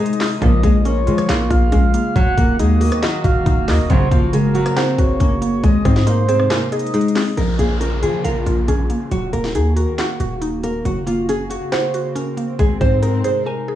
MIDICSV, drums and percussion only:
0, 0, Header, 1, 2, 480
1, 0, Start_track
1, 0, Key_signature, -5, "minor"
1, 0, Tempo, 434783
1, 463, Time_signature, 4, 2, 24, 8
1, 15182, End_track
2, 0, Start_track
2, 0, Title_t, "Drums"
2, 63, Note_on_c, 9, 42, 66
2, 143, Note_off_c, 9, 42, 0
2, 143, Note_on_c, 9, 42, 64
2, 222, Note_on_c, 9, 46, 56
2, 223, Note_on_c, 9, 38, 99
2, 228, Note_on_c, 9, 39, 81
2, 253, Note_off_c, 9, 42, 0
2, 333, Note_off_c, 9, 38, 0
2, 333, Note_off_c, 9, 46, 0
2, 338, Note_off_c, 9, 39, 0
2, 462, Note_on_c, 9, 36, 118
2, 462, Note_on_c, 9, 42, 66
2, 573, Note_off_c, 9, 36, 0
2, 573, Note_off_c, 9, 42, 0
2, 702, Note_on_c, 9, 36, 103
2, 702, Note_on_c, 9, 42, 78
2, 812, Note_off_c, 9, 36, 0
2, 812, Note_off_c, 9, 42, 0
2, 942, Note_on_c, 9, 42, 89
2, 1053, Note_off_c, 9, 42, 0
2, 1182, Note_on_c, 9, 42, 50
2, 1293, Note_off_c, 9, 42, 0
2, 1303, Note_on_c, 9, 37, 86
2, 1303, Note_on_c, 9, 42, 85
2, 1413, Note_off_c, 9, 37, 0
2, 1413, Note_off_c, 9, 42, 0
2, 1422, Note_on_c, 9, 42, 84
2, 1423, Note_on_c, 9, 38, 111
2, 1428, Note_on_c, 9, 39, 93
2, 1533, Note_off_c, 9, 38, 0
2, 1533, Note_off_c, 9, 42, 0
2, 1539, Note_off_c, 9, 39, 0
2, 1662, Note_on_c, 9, 36, 97
2, 1662, Note_on_c, 9, 42, 77
2, 1772, Note_off_c, 9, 36, 0
2, 1773, Note_off_c, 9, 42, 0
2, 1903, Note_on_c, 9, 36, 97
2, 1903, Note_on_c, 9, 42, 82
2, 2013, Note_off_c, 9, 36, 0
2, 2013, Note_off_c, 9, 42, 0
2, 2143, Note_on_c, 9, 42, 81
2, 2253, Note_off_c, 9, 42, 0
2, 2382, Note_on_c, 9, 42, 68
2, 2383, Note_on_c, 9, 36, 122
2, 2493, Note_off_c, 9, 36, 0
2, 2493, Note_off_c, 9, 42, 0
2, 2622, Note_on_c, 9, 36, 102
2, 2622, Note_on_c, 9, 42, 76
2, 2732, Note_off_c, 9, 36, 0
2, 2733, Note_off_c, 9, 42, 0
2, 2862, Note_on_c, 9, 42, 89
2, 2973, Note_off_c, 9, 42, 0
2, 3102, Note_on_c, 9, 42, 50
2, 3102, Note_on_c, 9, 46, 62
2, 3213, Note_off_c, 9, 42, 0
2, 3213, Note_off_c, 9, 46, 0
2, 3222, Note_on_c, 9, 42, 82
2, 3223, Note_on_c, 9, 37, 90
2, 3333, Note_off_c, 9, 37, 0
2, 3333, Note_off_c, 9, 42, 0
2, 3342, Note_on_c, 9, 42, 83
2, 3343, Note_on_c, 9, 38, 115
2, 3348, Note_on_c, 9, 39, 88
2, 3453, Note_off_c, 9, 38, 0
2, 3453, Note_off_c, 9, 42, 0
2, 3458, Note_off_c, 9, 39, 0
2, 3581, Note_on_c, 9, 36, 98
2, 3582, Note_on_c, 9, 42, 72
2, 3692, Note_off_c, 9, 36, 0
2, 3692, Note_off_c, 9, 42, 0
2, 3822, Note_on_c, 9, 42, 80
2, 3823, Note_on_c, 9, 36, 99
2, 3932, Note_off_c, 9, 42, 0
2, 3933, Note_off_c, 9, 36, 0
2, 4062, Note_on_c, 9, 38, 100
2, 4062, Note_on_c, 9, 46, 58
2, 4068, Note_on_c, 9, 39, 80
2, 4172, Note_off_c, 9, 46, 0
2, 4173, Note_off_c, 9, 38, 0
2, 4178, Note_off_c, 9, 39, 0
2, 4302, Note_on_c, 9, 36, 121
2, 4302, Note_on_c, 9, 42, 70
2, 4412, Note_off_c, 9, 42, 0
2, 4413, Note_off_c, 9, 36, 0
2, 4542, Note_on_c, 9, 36, 101
2, 4542, Note_on_c, 9, 42, 79
2, 4652, Note_off_c, 9, 36, 0
2, 4652, Note_off_c, 9, 42, 0
2, 4782, Note_on_c, 9, 42, 92
2, 4893, Note_off_c, 9, 42, 0
2, 5022, Note_on_c, 9, 42, 50
2, 5133, Note_off_c, 9, 42, 0
2, 5142, Note_on_c, 9, 37, 88
2, 5142, Note_on_c, 9, 42, 84
2, 5252, Note_off_c, 9, 42, 0
2, 5253, Note_off_c, 9, 37, 0
2, 5262, Note_on_c, 9, 42, 83
2, 5263, Note_on_c, 9, 38, 114
2, 5268, Note_on_c, 9, 39, 87
2, 5373, Note_off_c, 9, 38, 0
2, 5373, Note_off_c, 9, 42, 0
2, 5378, Note_off_c, 9, 39, 0
2, 5501, Note_on_c, 9, 36, 95
2, 5502, Note_on_c, 9, 42, 73
2, 5612, Note_off_c, 9, 36, 0
2, 5612, Note_off_c, 9, 42, 0
2, 5742, Note_on_c, 9, 36, 97
2, 5742, Note_on_c, 9, 42, 84
2, 5852, Note_off_c, 9, 42, 0
2, 5853, Note_off_c, 9, 36, 0
2, 5982, Note_on_c, 9, 42, 78
2, 6092, Note_off_c, 9, 42, 0
2, 6222, Note_on_c, 9, 36, 121
2, 6222, Note_on_c, 9, 42, 67
2, 6332, Note_off_c, 9, 36, 0
2, 6332, Note_off_c, 9, 42, 0
2, 6461, Note_on_c, 9, 36, 99
2, 6462, Note_on_c, 9, 37, 77
2, 6462, Note_on_c, 9, 42, 77
2, 6572, Note_off_c, 9, 36, 0
2, 6572, Note_off_c, 9, 37, 0
2, 6572, Note_off_c, 9, 42, 0
2, 6582, Note_on_c, 9, 38, 70
2, 6692, Note_off_c, 9, 38, 0
2, 6702, Note_on_c, 9, 42, 90
2, 6812, Note_off_c, 9, 42, 0
2, 6942, Note_on_c, 9, 42, 82
2, 7052, Note_off_c, 9, 42, 0
2, 7062, Note_on_c, 9, 37, 87
2, 7173, Note_off_c, 9, 37, 0
2, 7182, Note_on_c, 9, 38, 117
2, 7182, Note_on_c, 9, 42, 84
2, 7187, Note_on_c, 9, 39, 90
2, 7292, Note_off_c, 9, 42, 0
2, 7293, Note_off_c, 9, 38, 0
2, 7298, Note_off_c, 9, 39, 0
2, 7422, Note_on_c, 9, 42, 64
2, 7502, Note_off_c, 9, 42, 0
2, 7502, Note_on_c, 9, 42, 64
2, 7581, Note_off_c, 9, 42, 0
2, 7581, Note_on_c, 9, 42, 66
2, 7662, Note_off_c, 9, 42, 0
2, 7662, Note_on_c, 9, 42, 66
2, 7742, Note_off_c, 9, 42, 0
2, 7742, Note_on_c, 9, 42, 68
2, 7821, Note_off_c, 9, 42, 0
2, 7821, Note_on_c, 9, 42, 63
2, 7901, Note_on_c, 9, 46, 56
2, 7902, Note_on_c, 9, 38, 100
2, 7907, Note_on_c, 9, 39, 78
2, 7932, Note_off_c, 9, 42, 0
2, 8012, Note_off_c, 9, 38, 0
2, 8012, Note_off_c, 9, 46, 0
2, 8017, Note_off_c, 9, 39, 0
2, 8142, Note_on_c, 9, 42, 65
2, 8252, Note_off_c, 9, 42, 0
2, 8382, Note_on_c, 9, 42, 73
2, 8492, Note_off_c, 9, 42, 0
2, 8621, Note_on_c, 9, 42, 85
2, 8732, Note_off_c, 9, 42, 0
2, 8862, Note_on_c, 9, 42, 78
2, 8972, Note_off_c, 9, 42, 0
2, 9102, Note_on_c, 9, 42, 81
2, 9212, Note_off_c, 9, 42, 0
2, 9342, Note_on_c, 9, 42, 70
2, 9452, Note_off_c, 9, 42, 0
2, 9582, Note_on_c, 9, 42, 77
2, 9693, Note_off_c, 9, 42, 0
2, 9822, Note_on_c, 9, 42, 73
2, 9932, Note_off_c, 9, 42, 0
2, 10062, Note_on_c, 9, 42, 62
2, 10172, Note_off_c, 9, 42, 0
2, 10302, Note_on_c, 9, 42, 75
2, 10412, Note_off_c, 9, 42, 0
2, 10421, Note_on_c, 9, 38, 70
2, 10531, Note_off_c, 9, 38, 0
2, 10542, Note_on_c, 9, 42, 83
2, 10652, Note_off_c, 9, 42, 0
2, 10781, Note_on_c, 9, 42, 78
2, 10892, Note_off_c, 9, 42, 0
2, 11022, Note_on_c, 9, 38, 106
2, 11022, Note_on_c, 9, 42, 81
2, 11028, Note_on_c, 9, 39, 86
2, 11132, Note_off_c, 9, 42, 0
2, 11133, Note_off_c, 9, 38, 0
2, 11138, Note_off_c, 9, 39, 0
2, 11262, Note_on_c, 9, 42, 71
2, 11372, Note_off_c, 9, 42, 0
2, 11502, Note_on_c, 9, 42, 77
2, 11613, Note_off_c, 9, 42, 0
2, 11743, Note_on_c, 9, 42, 73
2, 11853, Note_off_c, 9, 42, 0
2, 11983, Note_on_c, 9, 42, 63
2, 12093, Note_off_c, 9, 42, 0
2, 12222, Note_on_c, 9, 42, 74
2, 12333, Note_off_c, 9, 42, 0
2, 12462, Note_on_c, 9, 42, 84
2, 12573, Note_off_c, 9, 42, 0
2, 12702, Note_on_c, 9, 42, 79
2, 12813, Note_off_c, 9, 42, 0
2, 12942, Note_on_c, 9, 42, 81
2, 12943, Note_on_c, 9, 38, 104
2, 12948, Note_on_c, 9, 39, 84
2, 13053, Note_off_c, 9, 38, 0
2, 13053, Note_off_c, 9, 42, 0
2, 13058, Note_off_c, 9, 39, 0
2, 13182, Note_on_c, 9, 42, 69
2, 13292, Note_off_c, 9, 42, 0
2, 13422, Note_on_c, 9, 42, 78
2, 13533, Note_off_c, 9, 42, 0
2, 13662, Note_on_c, 9, 42, 76
2, 13772, Note_off_c, 9, 42, 0
2, 13902, Note_on_c, 9, 36, 112
2, 13902, Note_on_c, 9, 42, 62
2, 14012, Note_off_c, 9, 42, 0
2, 14013, Note_off_c, 9, 36, 0
2, 14142, Note_on_c, 9, 36, 98
2, 14142, Note_on_c, 9, 42, 73
2, 14252, Note_off_c, 9, 36, 0
2, 14253, Note_off_c, 9, 42, 0
2, 14382, Note_on_c, 9, 42, 84
2, 14492, Note_off_c, 9, 42, 0
2, 14622, Note_on_c, 9, 42, 79
2, 14733, Note_off_c, 9, 42, 0
2, 15182, End_track
0, 0, End_of_file